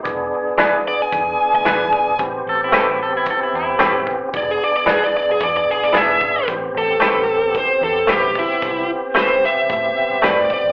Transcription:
<<
  \new Staff \with { instrumentName = "Lead electric guitar" } { \time 4/4 \key a \minor \tempo 4 = 112 r4. d''16 gis''4 gis''16 gis''4 | r1 | d''16 gis'16 d''16 d''16 gis'16 d''16 d''16 gis'16 d''16 d''16 gis'16 d''16 e''4 | r8 a'4. c''8 a'8 g'8 e'8~ |
e'8 r8 c''8 e''4. d''8 d''8 | }
  \new Staff \with { instrumentName = "Clean electric guitar" } { \time 4/4 \key a \minor r1 | r8 a'16 e'16 a'16 e'16 a'16 e'16 a'16 e'16 e'4 r8 | r1 | r1 |
r1 | }
  \new Staff \with { instrumentName = "Clean electric guitar" } { \time 4/4 \key a \minor r4 <e d' gis' b'>8 r4. <e d' gis' b'>8 r8 | r4 <a c' g' b'>8 r4. <a c' g' b'>8 r8 | r4 <e b d' gis'>8 r4. <e b d' gis'>8 r8 | r4 <a c' g' b'>8 r4. <a c' g' b'>8 r8 |
r4 <a c' g' b'>8 r4. <a c' g' b'>8 r8 | }
  \new Staff \with { instrumentName = "Tonewheel organ" } { \time 4/4 \key a \minor <b d' gis'>1 | <b c' g'>1 | <b d' gis'>1 | <b c' g'>1~ |
<b c' g'>1 | }
  \new Staff \with { instrumentName = "Fingered electric bass" } { \clef bass \time 4/4 \key a \minor e,,8 r4. e,8 r16 d,16 b,,16 e,16 r16 e,,16 | a,,8 a,,8 r16 a,,4 r16 e,8 e,16 a,,8 r16 | e,,8 r4. e,8 d,,8 e,,8 gis,,8 | a,,8 a,,8 r16 a,,4 r16 e,8 e,16 a,,8 r16 |
c,8 r4. a,8 r16 g,,16 e,16 a,16 r16 a,,16 | }
  \new DrumStaff \with { instrumentName = "Drums" } \drummode { \time 4/4 <hh bd>4 <hh sn>4 <hh bd>4 <hh sn>8 bd8 | <hh bd>4 <hh sn>4 <hh bd>4 <hh sn>8 bd8 | <hh bd>4 <hh sn>4 <hh bd>4 <hh sn>8 bd8 | <hh bd>4 <hh sn>4 <hh bd>4 <hh sn>8 bd8 |
<hh bd>4 <hh sn>8 sn8 <hh bd>4 <hh sn>8 bd8 | }
>>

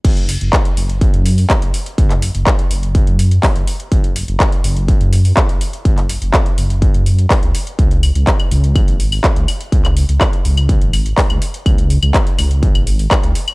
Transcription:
<<
  \new Staff \with { instrumentName = "Detuned saw bass" } { \clef bass \time 4/4 \key cis \phrygian \tempo 4 = 124 fis,,8. fis,,16 r8 fis,,8. fis,8. r16 fis,,16 r8 | fis,,8. fis,,16 r8 fis,,8. fis,8. r16 fis,,16 r8 | fis,,8. fis,,16 r8 fis,,8. fis,8. r16 fis,,16 r8 | fis,,8. fis,,16 r8 fis,,8. fis,8. r16 cis,16 r8 |
cis,8. cis,16 r8 cis,8. gis,,8. r16 cis,16 r8 | cis,8. cis,16 r8 cis,8. gis,,8. r16 cis,16 r8 | cis,8. cis,16 r8 cis,8. gis,,8. r16 cis,16 r8 | }
  \new DrumStaff \with { instrumentName = "Drums" } \drummode { \time 4/4 <cymc hh bd>16 hh16 hho16 hh16 <hc hh bd>16 hh16 hho16 hh16 <hh bd>16 hh16 hho16 hho16 <hc hh bd>16 hh16 hho16 hh16 | <hh bd>16 <hc hh>16 hho16 hh16 <hc hh bd>16 hh16 hho16 hh16 <hh bd>16 hh16 hho16 hh16 <hc hho bd>16 hh16 hho16 hh16 | <hh bd>16 hh16 hho16 hh16 <hc hh bd>16 hh16 hho16 hh16 <hh bd>16 hh16 hho16 hho16 <hc hh bd>16 hh16 hho16 hh16 | <hh bd>16 <hc hh>16 hho16 hh16 <hc hh bd>16 hh16 hho16 hh16 <hh bd>16 hh16 hho16 hh16 <hc hho bd>16 hh16 hho16 hh16 |
<hh bd>16 hh16 <cl hho>16 hh16 <hc hh bd>16 <cl hh>16 hho16 hh16 <cl hh bd>16 hh16 hho16 <cl hho>16 <hc hh bd>16 hh16 <cl hho>16 hh16 | <hh bd>16 <hc cl hh>16 hho16 hh16 <hc cl hh bd>16 hh16 hho16 <cl hh>16 <hh bd>16 hh16 <cl hho>16 hh16 <hc hho bd>16 <cl hh>16 hho16 hh16 | <cl hh bd>16 hh16 hho16 <cl hh>16 <hc hh bd>16 hh16 <cl hho>16 hh16 <hh bd>16 <cl hh>16 hho16 hho16 <hc cl hh bd>16 hh16 hho16 <cl hh>16 | }
>>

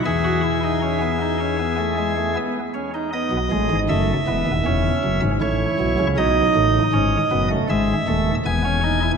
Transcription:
<<
  \new Staff \with { instrumentName = "Pipe organ" } { \time 4/4 \key e \major \tempo 4 = 79 << { e''2.~ e''8 r8 | dis''4 e''2 cis''4 | dis''2 e''4 gis''4 | } \\ { gis'16 fis'16 e'16 dis'16 cis'16 b16 dis'16 cis'16 b16 a16 gis16 a16 b8 cis'16 dis'16 | b8 gis8 a8 b8 cis'4 e'4 | dis'4 cis'8 b16 a16 gis8 a8 b16 cis'16 dis'16 e'16 | } >> }
  \new Staff \with { instrumentName = "Pipe organ" } { \clef bass \time 4/4 \key e \major <e, e>2.~ <e, e>8 r8 | r16 <b,, b,>16 <a,, a,>16 <gis,, gis,>16 <fis,, fis,>8 <e,, e,>16 <dis,, dis,>16 <e,, e,>8 <fis,, fis,>16 <gis,, gis,>16 <a,, a,>8 <b,, b,>16 <cis, cis>16 | <b,, b,>8 <a,, a,>8 <gis,, gis,>8 <fis,, fis,>8 <gis,, gis,>8 <dis,, dis,>8 <e,, e,>4 | }
>>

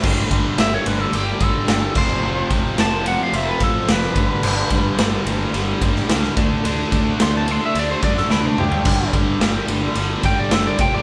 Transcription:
<<
  \new Staff \with { instrumentName = "Lead electric guitar" } { \time 4/4 \key g \lydian \tempo 4 = 109 r4 e''16 cis''16 b'16 a'16 g'8 a'4 c''8~ | c''8 r8 a''8 fis''16 f''16 e''16 b'16 a'8 b'4~ | b'2 r2 | r4 c'''16 a''16 c'''16 e''16 d''16 c''16 d''16 a'16 e'16 d'16 g'8~ |
g'8 r2 g''16 d''16 a'16 d''16 g''16 d''16 | }
  \new Staff \with { instrumentName = "Distorted electric guitar" } { \clef bass \time 4/4 \key g \lydian <g, d g>8 <g, d g>8 <g, d g>8 <g, d g>8 <g, d g>8 <g, d g>8 <g, d g>8 <f, c f>8 | <f, c f>8 <f, c f>8 <f, c f>8 <f, c f>8 <f, c f>8 <f, c f>8 <f, c f>8 <g, d g>8 | <g, d g>8 <g, d g>8 <g, d g>8 <g, d g>8 <g, d g>8 <g, d g>8 <g, d g>8 <d a d'>8 | <d a d'>8 <d a d'>8 <d a d'>8 <d a d'>8 <d a d'>8 <d a d'>8 <d a d'>8 <d a d'>8 |
<g, d g>8 <g, d g>8 <g, d g>8 <g, d g>8 <g, d g>8 <g, d g>8 <g, d g>8 <f, c f>8 | }
  \new Staff \with { instrumentName = "Overdriven electric guitar" } { \clef bass \time 4/4 \key g \lydian <g, d g>8 <g, d g>8 <g, d g>8 <g, d g>8 <g, d g>8 <g, d g>8 <g, d g>8 <f, c f>8 | <f, c f>8 <f, c f>8 <f, c f>8 <f, c f>8 <f, c f>8 <f, c f>8 <f, c f>8 <g, d g>8 | <g, d g>8 <g, d g>8 <g, d g>8 <g, d g>8 <g, d g>8 <g, d g>8 <g, d g>8 <d a d'>8 | <d a d'>8 <d a d'>8 <d a d'>8 <d a d'>8 <d a d'>8 <d a d'>8 <d a d'>8 <d a d'>8 |
<g, d g>8 <g, d g>8 <g, d g>8 <g, d g>8 <g, d g>8 <g, d g>8 <g, d g>8 <f, c f>8 | }
  \new Staff \with { instrumentName = "Overdriven electric guitar" } { \clef bass \time 4/4 \key g \lydian <g, d g>8 <g, d g>8 <g, d g>8 <g, d g>8 <g, d g>8 <g, d g>8 <g, d g>8 <f, c f>8 | <f, c f>8 <f, c f>8 <f, c f>8 <f, c f>8 <f, c f>8 <f, c f>8 <f, c f>8 <g, d g>8 | <g, d g>8 <g, d g>8 <g, d g>8 <g, d g>8 <g, d g>8 <g, d g>8 <g, d g>8 <d a d'>8 | <d a d'>8 <d a d'>8 <d a d'>8 <d a d'>8 <d a d'>8 <d a d'>8 <d a d'>8 <d a d'>8 |
<g, d g>8 <g, d g>8 <g, d g>8 <g, d g>8 <g, d g>8 <g, d g>8 <g, d g>8 <f, c f>8 | }
  \new Staff \with { instrumentName = "Picked electric bass" } { \clef bass \time 4/4 \key g \lydian g,,8 g,,8 g,,8 g,,8 g,,8 g,,8 g,,8 f,,8 | f,,8 f,,8 f,,4 f,,8 a,,8 f,,8 g,,8 | g,,8 g,,8 g,,8 g,,8 g,,8 g,,8 cis,8 d,8 | d,8 d,8 d,4 d,8 fis,8 d,8 d,8 |
g,,8 g,,8 g,,8 g,,8 g,,8 g,,8 fis,,8 f,,8 | }
  \new DrumStaff \with { instrumentName = "Drums" } \drummode { \time 4/4 <cymc bd>8 <bd cymr>8 <cymr sn>8 cymr8 cymr8 <bd cymr>8 <cymr sn>8 <cymc bd>8 | r8 <bd cymr>8 <cymr sn>8 cymr8 cymr8 <bd cymr>8 <cymr sn>16 sn16 <bd cymr>8 | cymc8 <bd cymr>8 <cymr sn>8 cymr8 cymr8 <bd cymr>16 sn16 <cymr sn>16 sn16 <bd cymr>8 | cymr8 <bd cymr>8 <cymr sn>8 cymr8 cymr8 <bd cymr>16 sn16 sn16 tommh16 toml16 tomfh16 |
<cymc bd>8 <bd cymr>8 <cymr sn>8 cymr8 cymr8 <bd cymr>8 <cymr sn>8 <bd cymr>8 | }
>>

